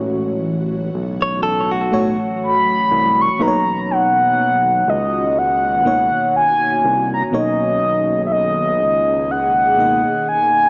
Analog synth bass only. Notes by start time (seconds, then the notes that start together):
Already playing: A1
0.94 B1
2.91 C2
3.40 B1
4.87 C#2
6.84 C2
7.33 B1
8.81 C#2